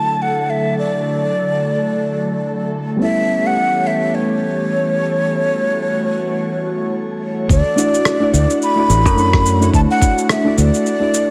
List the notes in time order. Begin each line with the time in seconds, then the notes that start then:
Already playing: D3 F#3 A3 D4 E4 A4 A5
0.22 F#5
0.50 E5
0.78 D5
2.97 G3 B3 C#4 G4 C#5
3.01 E3 E4 A4 E5
3.47 F#5
3.87 E5
4.15 C#5
5.25 F#4
7.49 D2 A3 D4 F#4 D5, kick, cabasa
7.76 A3 D4 E4 F#4 D5, cabasa
7.94 cabasa
8.05 cross-stick, cabasa
8.20 A3 D4 E4 F#4 D5
8.34 D2, cabasa
8.50 cabasa
8.62 B5, cabasa
8.76 A3 D4 E4 F#4 D5
8.89 A1, cabasa
9.06 F#2, kick, cabasa
9.15 A3 D4 E4 F#4 C#5, cabasa
9.33 kick, cross-stick
9.46 cabasa
9.60 A3 D4 E4 F#4 C#5, cabasa
9.74 D2 A5, kick, cabasa
9.91 F#5
10.00 A3 D4 E4 F#4 C#5, kick, cabasa
10.18 cabasa
10.29 E5, cross-stick, cabasa
10.44 A3 D4 E4 F#4 D5
10.58 D2 D5, cabasa
10.74 cabasa
10.86 cabasa
11.00 A3 D4 E4 F#4 D5
11.14 cabasa